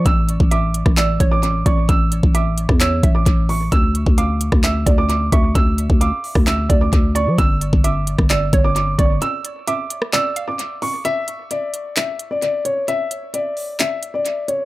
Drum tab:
HH |x-x-x-x-x-x-x-x-|x-x-x-x-x-x-x-o-|x-x-x-x-x-x-x-x-|x-x-x-o-x-x-x-x-|
CP |--------x-------|--------x-------|--------x-------|--------x-------|
SD |-------r--------|-------r--------|-------r--------|-------r--------|
BD |o--o---o--o---o-|o--o---o--o-o---|o--o---o--o---o-|o--o---o--o-o---|

HH |x-x-x-x-x-x-x-x-|x-x-x-x-x-x-x-o-|x-x-x-x-x-x-x-x-|x-x-x-o-x-x-x-x-|
CP |--------x-------|--------x-------|--------x-------|--------x-------|
SD |-------r--------|-------r--------|----------------|----------------|
BD |o--o---o--o---o-|----------------|----------------|----------------|